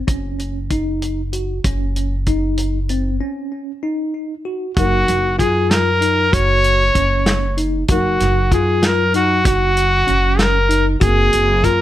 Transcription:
0.08 upright bass F#1, tine electric piano C#4, kick, closed hi-hat
0.39 closed hi-hat
0.70 tine electric piano D#4, kick, closed hi-hat
1.02 closed hi-hat
1.33 tine electric piano F#4, closed hi-hat
1.64 upright bass F#1, tine electric piano C#4, kick, closed hi-hat
1.96 closed hi-hat
2.26 tine electric piano D#4, kick, closed hi-hat
2.58 closed hi-hat
2.89 tine electric piano C4, closed hi-hat
3.21 tine electric piano C#4
3.83 tine electric piano D#4
4.45 tine electric piano F#4
4.77 upright bass F#1, grand piano F#3 D#4 A#4, trumpet F#4, tine electric piano F#4, kick, closed hi-hat
5.08 upright bass F#1, closed hi-hat
5.39 upright bass F#2, tine electric piano F4, trumpet G#4, kick, closed hi-hat
5.71 trumpet A#4, snare, closed hi-hat
6.01 tine electric piano D#4, closed hi-hat
6.32 upright bass F#1, tine electric piano F#4, trumpet C#5, kick, closed hi-hat
6.64 closed hi-hat
6.95 upright bass F#1, tine electric piano C#4, kick, closed hi-hat
7.26 snare, closed hi-hat
7.57 tine electric piano D#4, closed hi-hat
7.88 upright bass F#1, grand piano F#3 D#4 A#4, tine electric piano F#4, trumpet F#4, kick, closed hi-hat
8.20 upright bass F#1, snare, closed hi-hat
8.51 upright bass F#2, tine electric piano F4, trumpet G#4, kick, closed hi-hat
8.83 trumpet A#4, snare, closed hi-hat
9.14 tine electric piano D#4, trumpet F#4, closed hi-hat
9.45 upright bass F#1, tine electric piano F#4, trumpet F#4, kick, closed hi-hat
9.77 closed hi-hat
10.07 upright bass F#1, tine electric piano C#4, closed hi-hat
10.39 trumpet A#4, snare, closed hi-hat
10.69 tine electric piano D#4, closed hi-hat
11.00 upright bass F#1, grand piano A#3 C4 G#4, tine electric piano F#4, trumpet G#4, kick, closed hi-hat
11.33 upright bass F#1, closed hi-hat
11.64 upright bass F#2, tine electric piano F4, trumpet A#4, kick, closed hi-hat

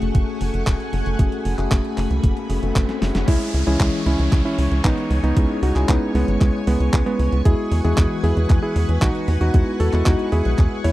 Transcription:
Already playing: tine electric piano A3 C#4 F#4 G#4, string machine A3 F#5 G#5 C#6, riser
0.02 analog synth bass F#1, closed hi-hat
0.15 analog synth bass F#1, kick, closed hi-hat
0.41 analog synth bass F#1, open hi-hat
0.54 analog synth bass F#1, closed hi-hat
0.67 analog synth bass E1, kick, clap, closed hi-hat
0.80 closed hi-hat
0.93 analog synth bass F#1, open hi-hat
1.06 analog synth bass F#1, closed hi-hat
1.19 analog synth bass F#1, tine electric piano A3 C#4 F#4 G#4, string machine B5, kick, closed hi-hat
1.32 closed hi-hat
1.45 analog synth bass F#1, open hi-hat
1.58 analog synth bass F#1, tine electric piano A3 C#4 F#4 G#4, clap, closed hi-hat
1.71 analog synth bass F#1, kick, clap, closed hi-hat
1.84 closed hi-hat
1.98 analog synth bass F#1, clap, open hi-hat
2.10 analog synth bass C#2, closed hi-hat
2.24 analog synth bass F#1, kick, closed hi-hat
2.37 closed hi-hat
2.50 analog synth bass F#1, tine electric piano A3 C#4 F#4 G#4, open hi-hat
2.63 analog synth bass F#1, tine electric piano A3 C#4 F#4 A4, closed hi-hat
2.76 analog synth bass F#1, kick, clap, closed hi-hat
2.89 snare, closed hi-hat
3.02 analog synth bass F#1, tine electric piano A3 C#4 F#4 G#4, snare, open hi-hat
3.15 analog synth bass F#1, snare, closed hi-hat
3.28 analog synth bass C#2, tine electric piano G#3 C#4 E4 G#4, electric grand piano C#4 E4, string machine C#5 G#5 C#6, kick, closed hi-hat, crash, downlifter
3.54 analog synth bass C#2, open hi-hat
3.67 analog synth bass C#2, tine electric piano E3 G#3 C#4 G#4, electric grand piano C#4 E4, closed hi-hat
3.80 analog synth bass C#2, kick, clap, closed hi-hat
4.06 analog synth bass C#2, electric grand piano C#4 E4, open hi-hat
4.19 analog synth bass C#2, closed hi-hat
4.32 analog synth bass C#2, kick, clap, closed hi-hat
4.45 electric grand piano C#4 E4
4.58 analog synth bass C#2, open hi-hat
4.71 analog synth bass C#2, closed hi-hat
4.84 analog synth bass B1, electric grand piano B3 D#4, kick, clap, closed hi-hat
4.98 closed hi-hat
5.10 analog synth bass C#2, open hi-hat
5.23 analog synth bass C#2, electric grand piano B3 D#4, closed hi-hat
5.36 analog synth bass C#2, tine electric piano G#3 C#4 E4 G#4, kick, closed hi-hat
5.62 analog synth bass C#2, electric grand piano D#4 F#4, open hi-hat
5.75 analog synth bass C#2, tine electric piano G#3 C#4 E4 G#4, clap, closed hi-hat
5.89 analog synth bass C#2, electric grand piano B3 D#4, kick, clap, closed hi-hat
6.15 analog synth bass C#2, electric grand piano G#3 B3, open hi-hat
6.28 analog synth bass G#1, closed hi-hat
6.41 analog synth bass C#2, kick, clap, closed hi-hat
6.67 analog synth bass C#2, electric grand piano G#3 B3, open hi-hat
6.80 analog synth bass C#2, closed hi-hat
6.93 analog synth bass C#2, kick, clap, closed hi-hat
7.06 electric grand piano G#3 B3, closed hi-hat
7.19 analog synth bass C#2, open hi-hat
7.32 analog synth bass C#2, closed hi-hat
7.45 analog synth bass E2, tine electric piano G#3 B3 E4 F#4, electric grand piano E4 G#4, string machine B4 F#5, kick, closed hi-hat
7.71 analog synth bass E2, open hi-hat
7.84 analog synth bass E2, tine electric piano E3 G#3 B3 F#4, electric grand piano E4 G#4, closed hi-hat
7.98 analog synth bass E2, kick, clap, closed hi-hat
8.23 analog synth bass E2, electric grand piano E4 G#4, open hi-hat
8.37 analog synth bass E2, closed hi-hat
8.50 analog synth bass E2, kick, clap, closed hi-hat
8.63 electric grand piano E4 G#4
8.76 analog synth bass E2, open hi-hat
8.89 analog synth bass E2, closed hi-hat
9.02 analog synth bass B1, electric grand piano D#4 F#4, kick, clap, closed hi-hat
9.15 closed hi-hat
9.28 analog synth bass E2, open hi-hat
9.41 analog synth bass E2, electric grand piano D#4 F#4, closed hi-hat
9.54 analog synth bass E2, tine electric piano G#3 B3 E4 F#4, kick, closed hi-hat
9.80 analog synth bass E2, electric grand piano F#4 A4, open hi-hat
9.93 analog synth bass E2, tine electric piano G#3 B3 E4 F#4, clap, closed hi-hat
10.06 analog synth bass E2, electric grand piano D#4 F#4, kick, clap, closed hi-hat
10.19 closed hi-hat
10.32 analog synth bass E2, electric grand piano E4 G#4, open hi-hat
10.45 analog synth bass B1, closed hi-hat
10.58 analog synth bass E2, kick, clap, closed hi-hat
10.84 analog synth bass E2, electric grand piano E4 C#5, open hi-hat

